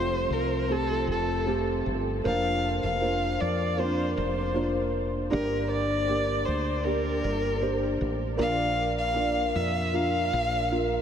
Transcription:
Already playing: F1 F3 A3 C4 F4 C5
0.30 C2 A#4
0.69 A3 C4 F4 G4 A4
1.07 F1 A4
1.46 A3 C4 F4 G4
1.86 G1
2.24 F1 A#3 D4 F4 C5 F5
2.83 F1 F5
3.00 A#3 D4 F4 C5
3.41 F2 D5
3.77 A#3 C4 F4 C5
3.84 D4
4.16 F1 C5
4.54 A#3 D4 F4 C5
5.30 G1 G2 A#3 D4 G4 A#4 D5
5.71 D5
6.07 A#3 D4 G4 D5
6.46 D2 C5
6.84 A#3 D4 G4 A#4 D5
7.24 G1
7.60 A#3 D4 G4 C5
8.01 A1
8.37 A#1 A#2 A#3 D4 F4 D5
8.42 F5
8.98 F5
9.14 A#3 D4 F4 D5
9.55 F2 E5
9.93 A#3 D4 F4 A#4 F5
10.33 A#1
10.71 A#3 D4 F4 A#4

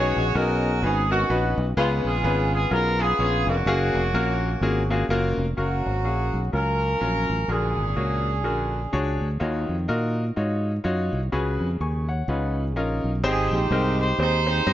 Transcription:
Already playing: B1 B2 B3 C#4 D#4 F#4 G#4 C#5
0.16 A#1
0.35 B1 B3 C#4 D#4 F#4 A#4
0.82 G#1 B3 C#4 D#4 F#4 G#4 B4
1.10 B3 C#4 D#4 F#4 A#4
1.30 A#1 B3 C#4 D#4 F#4 B4
1.58 B1
1.77 C#2 C#3 G#3 B3 C#4 F4 G#4 B4
2.05 A#1 B3 F4 G#4
2.24 G#1 B3 C#4 F4 G#4 B4
2.54 G#4
2.71 B1 B3 C#4 F4 G#4 A#4
2.99 B3 C#4 F4 G#4 B4
3.19 A#1 B3 C#4 F4 G#4 C#5
3.47 F1 A#3 C#4 F#4
3.66 F#1 A#3 C#4 F#4 G#4 F5
3.94 F1
4.14 A#1 A#3 C#4 F#4 A#4 F5
4.61 G#1 A#3 C#4 F4 F#4 G#4
4.90 A#3 C#4 F4 F#4 G#4
5.09 F#1 A#3 C#4 F4 F#4 A#4
5.38 F1
5.57 F#1 A#3 C#4 F#4 A#4 F5
5.86 G#1
6.05 A#1 C#4 F#4 G#4 F5
6.34 B1
6.52 C#2 F#3 C#4 F4 A#4
7.01 A#1 F#3 C#4 F4 A#4
7.30 A1
7.48 A#1 A#2 D3 C#4 D4 F#4 G#4 A#4
7.77 G#1
7.96 C#2 A#3 F#4 G#4 C#5
8.44 A#1 D3 F#4 G#4 A#4
8.93 C#2 D4 F#4 G#4 C#5
9.21 D2
9.40 D#2 D#3 D#4 F4 F#4 C#5
9.69 F2
9.88 A#2 D#4 F4 F#4 A#4
10.36 G#2 D#4 F4 F#4 C#5
10.84 F#2 D#4 F4 F#4 C#5
11.13 C2
11.32 C#2 C#3 C#4 F#4 G#4 B4
11.61 F2
11.81 D#2 G#5 C#6
12.09 C#5 F#5
12.28 C#2 C#3 C#4 D#4 F4 B4
12.75 A#1 C#4 D#4 F4 A#4
13.04 B1
13.24 G#1 G#2 C4 D#4 G4 G#4 C5
13.51 A#1 D#4 G4 C5
13.71 C2 G#3 C4 D#4 G4 A#4
14.00 C5
14.18 D#2 C4 D#4 G4 G#4 C5
14.46 C4 D#4 G4 G#4 C5
14.67 G2 C4 D#4 G4 C5 D#5

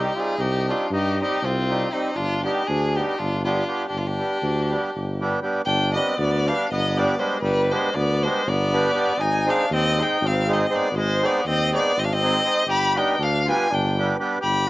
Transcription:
Already playing: C2 G3 C4 D#4 G4
0.15 G3 C4 D#4 F4 G4
0.20 G#4
0.38 C2 D#4 G4
0.67 G3 C4 D4 D#4 F4 G4
0.91 G2 D#4 G4
1.20 G3 C4 D#4 G4
1.43 C2 C4 F4
1.69 G3 C4 D#4 G4
1.92 G3 C4 D#4 G4
2.15 G1 D4 F4
2.43 G3 B3 D4 D#4 G4
2.67 D2 D4 G#4
2.96 G3 B3 D4 D#4 G4
3.18 G1 D4 F4
3.44 G3 B3 D4 F4 G4
3.67 G3 B3 D4 G4
3.89 G1 D4 G4
3.97 D4 F4
4.07 D4 G4
4.17 G3 B3 D4 G4
4.42 D2
4.70 G3 B3 D4 G4
4.95 G1
5.20 G3 B3 D4 G4
5.42 G3 B3 D4 G4
5.65 G1 D4 G5
5.93 G3 B3 D4 G4 B4 D#5
5.97 C4
6.18 D2 B3 D5
6.47 G3 B3 D4 G4 B4 F5
6.71 G1 B3 D#5
6.96 G3 B3 D4 G4 B4 D5
7.18 G3 G#3 B3 D4 G4 B4 C5
7.41 G1 G3 B4
7.70 G3 G#3 B3 D4 G4 B4 C5
7.94 D2 B3 D5
8.23 G3 G#3 B3 D4 G4 B4 C5
8.46 G1 B3 D5
8.73 G3 B3 D4 G4 B4
8.94 G3 B3 D4 G4 B4
9.18 G#1 D#4 G#5
9.45 G#3 C4 D#4 G#4 C5
9.50 D4 F5
9.70 D#2 C4 D#5
9.97 G#3 C4 D#4 G#4 C5
10.02 G5
10.21 G#1
10.26 C4 F5
10.48 G#3 C4 D#4 G#4 C5
10.53 D#5
10.70 G#3 C4 D#4 G#4 C5
10.74 B3 D5
10.92 G#1
10.97 G#3 C5
11.21 G#3 C4 D#4 G#4 C5
11.25 B3 D5
11.44 D#2 C4 D#5
11.72 G#3 C4 D#4 G#4 C5 D5
11.77 B3
11.97 G#1 C4 D#5
12.04 D4 F5
12.13 C4 D#5
12.22 G#3 C4 D#4 G#4 C5
12.44 G#3 C4 D#4 G#4 C5
12.66 G1 G4
12.71 B5
12.96 G3 B3 D4 D#4 G4 B4 G5
13.18 D2 D4
13.23 F5
13.45 G3 B3 D4 F4 G4 B4
13.50 G#5
13.71 G1 D4 G5
13.97 G3 B3 D4 G4 B4
14.19 G3 B3 D4 G4 B4
14.42 G1 G4 B5

